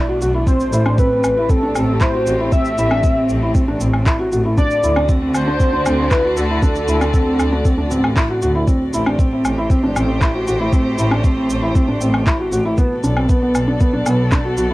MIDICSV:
0, 0, Header, 1, 6, 480
1, 0, Start_track
1, 0, Tempo, 512821
1, 442, Time_signature, 4, 2, 24, 8
1, 13793, End_track
2, 0, Start_track
2, 0, Title_t, "Soft synth lead"
2, 0, Program_c, 0, 80
2, 0, Note_on_c, 0, 74, 107
2, 198, Note_off_c, 0, 74, 0
2, 444, Note_on_c, 0, 72, 103
2, 924, Note_on_c, 0, 71, 97
2, 938, Note_off_c, 0, 72, 0
2, 1401, Note_on_c, 0, 69, 102
2, 1415, Note_off_c, 0, 71, 0
2, 1882, Note_on_c, 0, 72, 100
2, 1896, Note_off_c, 0, 69, 0
2, 2357, Note_off_c, 0, 72, 0
2, 2362, Note_on_c, 0, 76, 127
2, 3284, Note_off_c, 0, 76, 0
2, 4283, Note_on_c, 0, 74, 127
2, 4729, Note_off_c, 0, 74, 0
2, 5003, Note_on_c, 0, 72, 127
2, 5718, Note_on_c, 0, 71, 107
2, 5732, Note_off_c, 0, 72, 0
2, 5956, Note_off_c, 0, 71, 0
2, 5962, Note_on_c, 0, 69, 102
2, 7604, Note_off_c, 0, 69, 0
2, 13793, End_track
3, 0, Start_track
3, 0, Title_t, "Felt piano"
3, 0, Program_c, 1, 0
3, 78, Note_on_c, 1, 66, 78
3, 143, Note_off_c, 1, 66, 0
3, 199, Note_on_c, 1, 66, 83
3, 264, Note_off_c, 1, 66, 0
3, 319, Note_on_c, 1, 64, 73
3, 384, Note_off_c, 1, 64, 0
3, 440, Note_on_c, 1, 60, 88
3, 568, Note_off_c, 1, 60, 0
3, 681, Note_on_c, 1, 64, 82
3, 745, Note_off_c, 1, 64, 0
3, 803, Note_on_c, 1, 62, 76
3, 866, Note_off_c, 1, 62, 0
3, 924, Note_on_c, 1, 60, 92
3, 987, Note_off_c, 1, 60, 0
3, 1043, Note_on_c, 1, 60, 74
3, 1171, Note_off_c, 1, 60, 0
3, 1285, Note_on_c, 1, 64, 75
3, 1348, Note_off_c, 1, 64, 0
3, 1404, Note_on_c, 1, 60, 90
3, 1468, Note_off_c, 1, 60, 0
3, 1525, Note_on_c, 1, 62, 82
3, 1588, Note_off_c, 1, 62, 0
3, 1646, Note_on_c, 1, 60, 81
3, 1773, Note_off_c, 1, 60, 0
3, 1886, Note_on_c, 1, 64, 92
3, 1949, Note_off_c, 1, 64, 0
3, 2006, Note_on_c, 1, 66, 75
3, 2069, Note_off_c, 1, 66, 0
3, 2127, Note_on_c, 1, 66, 76
3, 2189, Note_off_c, 1, 66, 0
3, 2245, Note_on_c, 1, 64, 76
3, 2308, Note_off_c, 1, 64, 0
3, 2366, Note_on_c, 1, 60, 92
3, 2493, Note_off_c, 1, 60, 0
3, 2606, Note_on_c, 1, 64, 87
3, 2669, Note_off_c, 1, 64, 0
3, 2726, Note_on_c, 1, 62, 78
3, 2789, Note_off_c, 1, 62, 0
3, 2845, Note_on_c, 1, 60, 90
3, 2908, Note_off_c, 1, 60, 0
3, 2965, Note_on_c, 1, 60, 75
3, 3092, Note_off_c, 1, 60, 0
3, 3204, Note_on_c, 1, 64, 79
3, 3268, Note_off_c, 1, 64, 0
3, 3323, Note_on_c, 1, 60, 89
3, 3387, Note_off_c, 1, 60, 0
3, 3445, Note_on_c, 1, 62, 85
3, 3508, Note_off_c, 1, 62, 0
3, 3563, Note_on_c, 1, 60, 82
3, 3691, Note_off_c, 1, 60, 0
3, 3801, Note_on_c, 1, 64, 90
3, 3865, Note_off_c, 1, 64, 0
3, 3921, Note_on_c, 1, 66, 73
3, 3985, Note_off_c, 1, 66, 0
3, 4044, Note_on_c, 1, 66, 79
3, 4107, Note_off_c, 1, 66, 0
3, 4165, Note_on_c, 1, 64, 74
3, 4229, Note_off_c, 1, 64, 0
3, 4285, Note_on_c, 1, 62, 100
3, 4413, Note_off_c, 1, 62, 0
3, 4523, Note_on_c, 1, 64, 80
3, 4587, Note_off_c, 1, 64, 0
3, 4644, Note_on_c, 1, 62, 81
3, 4707, Note_off_c, 1, 62, 0
3, 4763, Note_on_c, 1, 60, 88
3, 4827, Note_off_c, 1, 60, 0
3, 4884, Note_on_c, 1, 60, 78
3, 5012, Note_off_c, 1, 60, 0
3, 5126, Note_on_c, 1, 62, 77
3, 5189, Note_off_c, 1, 62, 0
3, 5246, Note_on_c, 1, 60, 85
3, 5309, Note_off_c, 1, 60, 0
3, 5366, Note_on_c, 1, 62, 85
3, 5429, Note_off_c, 1, 62, 0
3, 5486, Note_on_c, 1, 60, 80
3, 5613, Note_off_c, 1, 60, 0
3, 5724, Note_on_c, 1, 64, 87
3, 5788, Note_off_c, 1, 64, 0
3, 5845, Note_on_c, 1, 66, 77
3, 5908, Note_off_c, 1, 66, 0
3, 5965, Note_on_c, 1, 66, 82
3, 6028, Note_off_c, 1, 66, 0
3, 6086, Note_on_c, 1, 64, 81
3, 6149, Note_off_c, 1, 64, 0
3, 6206, Note_on_c, 1, 62, 97
3, 6333, Note_off_c, 1, 62, 0
3, 6444, Note_on_c, 1, 64, 81
3, 6507, Note_off_c, 1, 64, 0
3, 6563, Note_on_c, 1, 62, 84
3, 6627, Note_off_c, 1, 62, 0
3, 6683, Note_on_c, 1, 60, 89
3, 6747, Note_off_c, 1, 60, 0
3, 6801, Note_on_c, 1, 60, 80
3, 6930, Note_off_c, 1, 60, 0
3, 7044, Note_on_c, 1, 62, 81
3, 7107, Note_off_c, 1, 62, 0
3, 7164, Note_on_c, 1, 60, 87
3, 7228, Note_off_c, 1, 60, 0
3, 7281, Note_on_c, 1, 62, 82
3, 7345, Note_off_c, 1, 62, 0
3, 7401, Note_on_c, 1, 60, 83
3, 7529, Note_off_c, 1, 60, 0
3, 7641, Note_on_c, 1, 64, 89
3, 7705, Note_off_c, 1, 64, 0
3, 7760, Note_on_c, 1, 66, 75
3, 7825, Note_off_c, 1, 66, 0
3, 7882, Note_on_c, 1, 66, 86
3, 7946, Note_off_c, 1, 66, 0
3, 8002, Note_on_c, 1, 64, 81
3, 8066, Note_off_c, 1, 64, 0
3, 8122, Note_on_c, 1, 60, 91
3, 8250, Note_off_c, 1, 60, 0
3, 8365, Note_on_c, 1, 64, 85
3, 8428, Note_off_c, 1, 64, 0
3, 8486, Note_on_c, 1, 62, 80
3, 8549, Note_off_c, 1, 62, 0
3, 8604, Note_on_c, 1, 60, 85
3, 8668, Note_off_c, 1, 60, 0
3, 8726, Note_on_c, 1, 60, 77
3, 8853, Note_off_c, 1, 60, 0
3, 8967, Note_on_c, 1, 64, 78
3, 9029, Note_off_c, 1, 64, 0
3, 9087, Note_on_c, 1, 60, 92
3, 9149, Note_off_c, 1, 60, 0
3, 9206, Note_on_c, 1, 62, 85
3, 9269, Note_off_c, 1, 62, 0
3, 9327, Note_on_c, 1, 60, 81
3, 9454, Note_off_c, 1, 60, 0
3, 9564, Note_on_c, 1, 64, 87
3, 9628, Note_off_c, 1, 64, 0
3, 9685, Note_on_c, 1, 66, 69
3, 9748, Note_off_c, 1, 66, 0
3, 9804, Note_on_c, 1, 66, 81
3, 9868, Note_off_c, 1, 66, 0
3, 9925, Note_on_c, 1, 64, 79
3, 9988, Note_off_c, 1, 64, 0
3, 10043, Note_on_c, 1, 60, 93
3, 10171, Note_off_c, 1, 60, 0
3, 10281, Note_on_c, 1, 64, 82
3, 10346, Note_off_c, 1, 64, 0
3, 10400, Note_on_c, 1, 62, 81
3, 10464, Note_off_c, 1, 62, 0
3, 10522, Note_on_c, 1, 60, 91
3, 10586, Note_off_c, 1, 60, 0
3, 10642, Note_on_c, 1, 60, 79
3, 10770, Note_off_c, 1, 60, 0
3, 10879, Note_on_c, 1, 64, 76
3, 10944, Note_off_c, 1, 64, 0
3, 11000, Note_on_c, 1, 60, 92
3, 11064, Note_off_c, 1, 60, 0
3, 11123, Note_on_c, 1, 62, 80
3, 11187, Note_off_c, 1, 62, 0
3, 11241, Note_on_c, 1, 60, 79
3, 11369, Note_off_c, 1, 60, 0
3, 11479, Note_on_c, 1, 64, 91
3, 11544, Note_off_c, 1, 64, 0
3, 11600, Note_on_c, 1, 66, 75
3, 11665, Note_off_c, 1, 66, 0
3, 11720, Note_on_c, 1, 66, 83
3, 11785, Note_off_c, 1, 66, 0
3, 11843, Note_on_c, 1, 64, 75
3, 11906, Note_off_c, 1, 64, 0
3, 11960, Note_on_c, 1, 59, 101
3, 12088, Note_off_c, 1, 59, 0
3, 12201, Note_on_c, 1, 62, 82
3, 12265, Note_off_c, 1, 62, 0
3, 12323, Note_on_c, 1, 60, 82
3, 12387, Note_off_c, 1, 60, 0
3, 12443, Note_on_c, 1, 59, 88
3, 12507, Note_off_c, 1, 59, 0
3, 12561, Note_on_c, 1, 59, 78
3, 12689, Note_off_c, 1, 59, 0
3, 12802, Note_on_c, 1, 62, 81
3, 12866, Note_off_c, 1, 62, 0
3, 12921, Note_on_c, 1, 59, 94
3, 12985, Note_off_c, 1, 59, 0
3, 13041, Note_on_c, 1, 62, 85
3, 13106, Note_off_c, 1, 62, 0
3, 13163, Note_on_c, 1, 59, 81
3, 13291, Note_off_c, 1, 59, 0
3, 13402, Note_on_c, 1, 62, 86
3, 13466, Note_off_c, 1, 62, 0
3, 13523, Note_on_c, 1, 66, 76
3, 13586, Note_off_c, 1, 66, 0
3, 13642, Note_on_c, 1, 66, 79
3, 13706, Note_off_c, 1, 66, 0
3, 13761, Note_on_c, 1, 64, 75
3, 13793, Note_off_c, 1, 64, 0
3, 13793, End_track
4, 0, Start_track
4, 0, Title_t, "String quartet"
4, 0, Program_c, 2, 48
4, 0, Note_on_c, 2, 47, 93
4, 0, Note_on_c, 2, 57, 82
4, 0, Note_on_c, 2, 62, 84
4, 0, Note_on_c, 2, 71, 72
4, 441, Note_on_c, 2, 45, 76
4, 442, Note_off_c, 2, 47, 0
4, 443, Note_off_c, 2, 71, 0
4, 728, Note_on_c, 2, 67, 80
4, 1082, Note_on_c, 2, 60, 82
4, 1220, Note_off_c, 2, 62, 0
4, 4280, Note_off_c, 2, 67, 0
4, 4281, Note_off_c, 2, 45, 0
4, 4283, Note_on_c, 2, 50, 98
4, 4454, Note_on_c, 2, 74, 71
4, 4586, Note_on_c, 2, 66, 83
4, 4886, Note_off_c, 2, 60, 0
4, 8120, Note_on_c, 2, 45, 76
4, 8122, Note_off_c, 2, 50, 0
4, 8122, Note_off_c, 2, 66, 0
4, 8123, Note_off_c, 2, 57, 0
4, 8256, Note_on_c, 2, 57, 82
4, 8343, Note_on_c, 2, 67, 82
4, 8367, Note_on_c, 2, 72, 87
4, 8821, Note_off_c, 2, 74, 0
4, 11958, Note_on_c, 2, 47, 81
4, 11960, Note_off_c, 2, 57, 0
4, 11961, Note_off_c, 2, 45, 0
4, 11961, Note_off_c, 2, 67, 0
4, 11962, Note_off_c, 2, 72, 0
4, 11981, Note_on_c, 2, 59, 78
4, 12030, Note_on_c, 2, 69, 80
4, 12143, Note_on_c, 2, 74, 69
4, 13793, Note_off_c, 2, 47, 0
4, 13793, Note_off_c, 2, 59, 0
4, 13793, Note_off_c, 2, 69, 0
4, 13793, Note_off_c, 2, 74, 0
4, 13793, End_track
5, 0, Start_track
5, 0, Title_t, "Double bass section"
5, 0, Program_c, 3, 48
5, 203, Note_on_c, 3, 35, 88
5, 352, Note_off_c, 3, 35, 0
5, 681, Note_on_c, 3, 33, 105
5, 831, Note_off_c, 3, 33, 0
5, 1162, Note_on_c, 3, 33, 78
5, 1312, Note_off_c, 3, 33, 0
5, 1520, Note_on_c, 3, 33, 86
5, 1596, Note_off_c, 3, 33, 0
5, 1642, Note_on_c, 3, 33, 106
5, 1792, Note_off_c, 3, 33, 0
5, 2121, Note_on_c, 3, 33, 87
5, 2271, Note_off_c, 3, 33, 0
5, 2602, Note_on_c, 3, 33, 97
5, 2752, Note_off_c, 3, 33, 0
5, 3084, Note_on_c, 3, 33, 85
5, 3233, Note_off_c, 3, 33, 0
5, 3446, Note_on_c, 3, 33, 92
5, 3519, Note_off_c, 3, 33, 0
5, 3565, Note_on_c, 3, 33, 108
5, 3713, Note_off_c, 3, 33, 0
5, 4045, Note_on_c, 3, 33, 93
5, 4193, Note_off_c, 3, 33, 0
5, 4525, Note_on_c, 3, 38, 100
5, 4673, Note_off_c, 3, 38, 0
5, 5003, Note_on_c, 3, 38, 84
5, 5152, Note_off_c, 3, 38, 0
5, 5365, Note_on_c, 3, 38, 100
5, 5438, Note_off_c, 3, 38, 0
5, 5485, Note_on_c, 3, 38, 112
5, 5633, Note_off_c, 3, 38, 0
5, 5963, Note_on_c, 3, 38, 89
5, 6112, Note_off_c, 3, 38, 0
5, 6443, Note_on_c, 3, 38, 108
5, 6592, Note_off_c, 3, 38, 0
5, 6922, Note_on_c, 3, 38, 87
5, 7072, Note_off_c, 3, 38, 0
5, 7282, Note_on_c, 3, 38, 97
5, 7357, Note_off_c, 3, 38, 0
5, 7404, Note_on_c, 3, 33, 105
5, 7553, Note_off_c, 3, 33, 0
5, 7884, Note_on_c, 3, 38, 100
5, 8033, Note_off_c, 3, 38, 0
5, 8366, Note_on_c, 3, 33, 99
5, 8514, Note_off_c, 3, 33, 0
5, 8843, Note_on_c, 3, 33, 84
5, 8992, Note_off_c, 3, 33, 0
5, 9202, Note_on_c, 3, 33, 97
5, 9276, Note_off_c, 3, 33, 0
5, 9320, Note_on_c, 3, 33, 116
5, 9471, Note_off_c, 3, 33, 0
5, 9801, Note_on_c, 3, 33, 88
5, 9951, Note_off_c, 3, 33, 0
5, 10280, Note_on_c, 3, 33, 101
5, 10431, Note_off_c, 3, 33, 0
5, 10761, Note_on_c, 3, 33, 86
5, 10911, Note_off_c, 3, 33, 0
5, 11123, Note_on_c, 3, 33, 90
5, 11197, Note_off_c, 3, 33, 0
5, 11243, Note_on_c, 3, 33, 103
5, 11393, Note_off_c, 3, 33, 0
5, 11725, Note_on_c, 3, 33, 89
5, 11873, Note_off_c, 3, 33, 0
5, 12205, Note_on_c, 3, 35, 104
5, 12353, Note_off_c, 3, 35, 0
5, 12684, Note_on_c, 3, 35, 83
5, 12833, Note_off_c, 3, 35, 0
5, 13044, Note_on_c, 3, 35, 95
5, 13118, Note_off_c, 3, 35, 0
5, 13163, Note_on_c, 3, 35, 108
5, 13312, Note_off_c, 3, 35, 0
5, 13643, Note_on_c, 3, 35, 88
5, 13792, Note_off_c, 3, 35, 0
5, 13793, End_track
6, 0, Start_track
6, 0, Title_t, "Drums"
6, 201, Note_on_c, 9, 82, 63
6, 294, Note_off_c, 9, 82, 0
6, 439, Note_on_c, 9, 36, 109
6, 442, Note_on_c, 9, 82, 43
6, 532, Note_off_c, 9, 36, 0
6, 536, Note_off_c, 9, 82, 0
6, 563, Note_on_c, 9, 82, 31
6, 657, Note_off_c, 9, 82, 0
6, 682, Note_on_c, 9, 82, 64
6, 776, Note_off_c, 9, 82, 0
6, 802, Note_on_c, 9, 77, 62
6, 895, Note_off_c, 9, 77, 0
6, 919, Note_on_c, 9, 36, 109
6, 921, Note_on_c, 9, 82, 42
6, 1013, Note_off_c, 9, 36, 0
6, 1015, Note_off_c, 9, 82, 0
6, 1160, Note_on_c, 9, 77, 61
6, 1160, Note_on_c, 9, 82, 63
6, 1253, Note_off_c, 9, 77, 0
6, 1253, Note_off_c, 9, 82, 0
6, 1399, Note_on_c, 9, 36, 113
6, 1401, Note_on_c, 9, 82, 43
6, 1493, Note_off_c, 9, 36, 0
6, 1495, Note_off_c, 9, 82, 0
6, 1642, Note_on_c, 9, 77, 64
6, 1642, Note_on_c, 9, 82, 65
6, 1736, Note_off_c, 9, 77, 0
6, 1736, Note_off_c, 9, 82, 0
6, 1879, Note_on_c, 9, 39, 71
6, 1879, Note_on_c, 9, 82, 40
6, 1880, Note_on_c, 9, 36, 108
6, 1973, Note_off_c, 9, 39, 0
6, 1973, Note_off_c, 9, 82, 0
6, 1974, Note_off_c, 9, 36, 0
6, 2121, Note_on_c, 9, 82, 61
6, 2215, Note_off_c, 9, 82, 0
6, 2360, Note_on_c, 9, 36, 102
6, 2361, Note_on_c, 9, 82, 40
6, 2454, Note_off_c, 9, 36, 0
6, 2454, Note_off_c, 9, 82, 0
6, 2481, Note_on_c, 9, 82, 30
6, 2575, Note_off_c, 9, 82, 0
6, 2601, Note_on_c, 9, 82, 62
6, 2695, Note_off_c, 9, 82, 0
6, 2722, Note_on_c, 9, 77, 68
6, 2815, Note_off_c, 9, 77, 0
6, 2840, Note_on_c, 9, 82, 41
6, 2841, Note_on_c, 9, 36, 108
6, 2933, Note_off_c, 9, 82, 0
6, 2935, Note_off_c, 9, 36, 0
6, 3081, Note_on_c, 9, 82, 60
6, 3174, Note_off_c, 9, 82, 0
6, 3321, Note_on_c, 9, 36, 106
6, 3322, Note_on_c, 9, 82, 38
6, 3415, Note_off_c, 9, 36, 0
6, 3416, Note_off_c, 9, 82, 0
6, 3560, Note_on_c, 9, 82, 62
6, 3654, Note_off_c, 9, 82, 0
6, 3682, Note_on_c, 9, 77, 62
6, 3775, Note_off_c, 9, 77, 0
6, 3801, Note_on_c, 9, 36, 105
6, 3803, Note_on_c, 9, 39, 74
6, 3803, Note_on_c, 9, 82, 44
6, 3895, Note_off_c, 9, 36, 0
6, 3896, Note_off_c, 9, 39, 0
6, 3896, Note_off_c, 9, 82, 0
6, 4045, Note_on_c, 9, 82, 64
6, 4139, Note_off_c, 9, 82, 0
6, 4282, Note_on_c, 9, 36, 99
6, 4283, Note_on_c, 9, 82, 43
6, 4375, Note_off_c, 9, 36, 0
6, 4377, Note_off_c, 9, 82, 0
6, 4404, Note_on_c, 9, 82, 29
6, 4498, Note_off_c, 9, 82, 0
6, 4524, Note_on_c, 9, 82, 61
6, 4618, Note_off_c, 9, 82, 0
6, 4644, Note_on_c, 9, 77, 69
6, 4737, Note_off_c, 9, 77, 0
6, 4762, Note_on_c, 9, 36, 112
6, 4763, Note_on_c, 9, 82, 43
6, 4856, Note_off_c, 9, 36, 0
6, 4856, Note_off_c, 9, 82, 0
6, 5003, Note_on_c, 9, 77, 66
6, 5003, Note_on_c, 9, 82, 60
6, 5096, Note_off_c, 9, 77, 0
6, 5096, Note_off_c, 9, 82, 0
6, 5242, Note_on_c, 9, 36, 110
6, 5244, Note_on_c, 9, 82, 40
6, 5335, Note_off_c, 9, 36, 0
6, 5338, Note_off_c, 9, 82, 0
6, 5484, Note_on_c, 9, 77, 66
6, 5484, Note_on_c, 9, 82, 62
6, 5578, Note_off_c, 9, 77, 0
6, 5578, Note_off_c, 9, 82, 0
6, 5721, Note_on_c, 9, 36, 105
6, 5722, Note_on_c, 9, 39, 78
6, 5722, Note_on_c, 9, 82, 42
6, 5815, Note_off_c, 9, 36, 0
6, 5816, Note_off_c, 9, 39, 0
6, 5816, Note_off_c, 9, 82, 0
6, 5962, Note_on_c, 9, 82, 64
6, 6055, Note_off_c, 9, 82, 0
6, 6201, Note_on_c, 9, 36, 109
6, 6204, Note_on_c, 9, 82, 42
6, 6295, Note_off_c, 9, 36, 0
6, 6298, Note_off_c, 9, 82, 0
6, 6323, Note_on_c, 9, 82, 30
6, 6417, Note_off_c, 9, 82, 0
6, 6442, Note_on_c, 9, 82, 63
6, 6536, Note_off_c, 9, 82, 0
6, 6564, Note_on_c, 9, 77, 69
6, 6564, Note_on_c, 9, 82, 30
6, 6658, Note_off_c, 9, 77, 0
6, 6658, Note_off_c, 9, 82, 0
6, 6681, Note_on_c, 9, 36, 103
6, 6683, Note_on_c, 9, 82, 41
6, 6774, Note_off_c, 9, 36, 0
6, 6776, Note_off_c, 9, 82, 0
6, 6922, Note_on_c, 9, 77, 68
6, 6922, Note_on_c, 9, 82, 60
6, 7015, Note_off_c, 9, 77, 0
6, 7015, Note_off_c, 9, 82, 0
6, 7161, Note_on_c, 9, 36, 109
6, 7163, Note_on_c, 9, 82, 43
6, 7255, Note_off_c, 9, 36, 0
6, 7257, Note_off_c, 9, 82, 0
6, 7403, Note_on_c, 9, 82, 62
6, 7497, Note_off_c, 9, 82, 0
6, 7524, Note_on_c, 9, 77, 68
6, 7618, Note_off_c, 9, 77, 0
6, 7641, Note_on_c, 9, 36, 105
6, 7643, Note_on_c, 9, 39, 75
6, 7643, Note_on_c, 9, 82, 44
6, 7735, Note_off_c, 9, 36, 0
6, 7737, Note_off_c, 9, 39, 0
6, 7737, Note_off_c, 9, 82, 0
6, 7883, Note_on_c, 9, 82, 62
6, 7976, Note_off_c, 9, 82, 0
6, 8121, Note_on_c, 9, 36, 116
6, 8124, Note_on_c, 9, 82, 42
6, 8215, Note_off_c, 9, 36, 0
6, 8218, Note_off_c, 9, 82, 0
6, 8364, Note_on_c, 9, 82, 68
6, 8458, Note_off_c, 9, 82, 0
6, 8484, Note_on_c, 9, 77, 71
6, 8578, Note_off_c, 9, 77, 0
6, 8601, Note_on_c, 9, 36, 112
6, 8605, Note_on_c, 9, 82, 45
6, 8694, Note_off_c, 9, 36, 0
6, 8699, Note_off_c, 9, 82, 0
6, 8845, Note_on_c, 9, 77, 65
6, 8845, Note_on_c, 9, 82, 66
6, 8939, Note_off_c, 9, 77, 0
6, 8939, Note_off_c, 9, 82, 0
6, 9080, Note_on_c, 9, 36, 111
6, 9085, Note_on_c, 9, 82, 44
6, 9174, Note_off_c, 9, 36, 0
6, 9179, Note_off_c, 9, 82, 0
6, 9325, Note_on_c, 9, 77, 74
6, 9325, Note_on_c, 9, 82, 66
6, 9418, Note_off_c, 9, 77, 0
6, 9418, Note_off_c, 9, 82, 0
6, 9560, Note_on_c, 9, 36, 109
6, 9564, Note_on_c, 9, 39, 78
6, 9564, Note_on_c, 9, 82, 44
6, 9654, Note_off_c, 9, 36, 0
6, 9657, Note_off_c, 9, 39, 0
6, 9657, Note_off_c, 9, 82, 0
6, 9805, Note_on_c, 9, 82, 60
6, 9898, Note_off_c, 9, 82, 0
6, 10040, Note_on_c, 9, 36, 114
6, 10043, Note_on_c, 9, 82, 47
6, 10134, Note_off_c, 9, 36, 0
6, 10136, Note_off_c, 9, 82, 0
6, 10281, Note_on_c, 9, 82, 68
6, 10375, Note_off_c, 9, 82, 0
6, 10402, Note_on_c, 9, 77, 68
6, 10495, Note_off_c, 9, 77, 0
6, 10520, Note_on_c, 9, 36, 112
6, 10521, Note_on_c, 9, 82, 48
6, 10614, Note_off_c, 9, 36, 0
6, 10614, Note_off_c, 9, 82, 0
6, 10762, Note_on_c, 9, 82, 67
6, 10855, Note_off_c, 9, 82, 0
6, 11001, Note_on_c, 9, 36, 119
6, 11002, Note_on_c, 9, 82, 46
6, 11094, Note_off_c, 9, 36, 0
6, 11096, Note_off_c, 9, 82, 0
6, 11241, Note_on_c, 9, 82, 65
6, 11335, Note_off_c, 9, 82, 0
6, 11361, Note_on_c, 9, 77, 65
6, 11454, Note_off_c, 9, 77, 0
6, 11481, Note_on_c, 9, 36, 113
6, 11482, Note_on_c, 9, 39, 82
6, 11482, Note_on_c, 9, 82, 46
6, 11575, Note_off_c, 9, 36, 0
6, 11576, Note_off_c, 9, 39, 0
6, 11576, Note_off_c, 9, 82, 0
6, 11721, Note_on_c, 9, 82, 68
6, 11815, Note_off_c, 9, 82, 0
6, 11960, Note_on_c, 9, 82, 46
6, 11961, Note_on_c, 9, 36, 111
6, 12054, Note_off_c, 9, 82, 0
6, 12055, Note_off_c, 9, 36, 0
6, 12201, Note_on_c, 9, 82, 70
6, 12295, Note_off_c, 9, 82, 0
6, 12323, Note_on_c, 9, 77, 67
6, 12416, Note_off_c, 9, 77, 0
6, 12441, Note_on_c, 9, 36, 112
6, 12442, Note_on_c, 9, 82, 43
6, 12535, Note_off_c, 9, 36, 0
6, 12535, Note_off_c, 9, 82, 0
6, 12681, Note_on_c, 9, 77, 61
6, 12681, Note_on_c, 9, 82, 69
6, 12775, Note_off_c, 9, 77, 0
6, 12775, Note_off_c, 9, 82, 0
6, 12921, Note_on_c, 9, 82, 46
6, 12922, Note_on_c, 9, 36, 119
6, 13015, Note_off_c, 9, 36, 0
6, 13015, Note_off_c, 9, 82, 0
6, 13161, Note_on_c, 9, 77, 67
6, 13161, Note_on_c, 9, 82, 70
6, 13254, Note_off_c, 9, 77, 0
6, 13254, Note_off_c, 9, 82, 0
6, 13400, Note_on_c, 9, 39, 77
6, 13400, Note_on_c, 9, 82, 47
6, 13401, Note_on_c, 9, 36, 113
6, 13494, Note_off_c, 9, 39, 0
6, 13494, Note_off_c, 9, 82, 0
6, 13495, Note_off_c, 9, 36, 0
6, 13640, Note_on_c, 9, 82, 65
6, 13734, Note_off_c, 9, 82, 0
6, 13793, End_track
0, 0, End_of_file